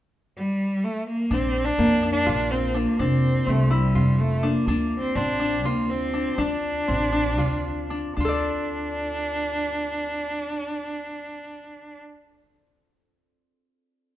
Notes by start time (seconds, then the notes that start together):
0.37 G3
0.84 A3
1.08 A#3
1.31 A#1 C4 D4
1.65 D4
1.78 F2 A#3
2.03 D4
2.13 D4
2.26 A#1 F4
2.51 C4
2.74 A#3 D4
2.99 F1 C4 D4
3.46 C2 A3 C4
3.70 G3 E4
3.95 F1 F4
4.20 A3
4.43 A#3 D4
4.67 D2 D4
5.00 C4
5.16 A1 C4 D4
5.40 D4
5.64 D2 A#3 F4
5.90 C4
6.14 D4
6.38 D2 D4
6.88 A1 C4
7.12 D4
7.38 D2 F4
7.90 D4
8.16 D2 D4 F4
8.25 A4 D5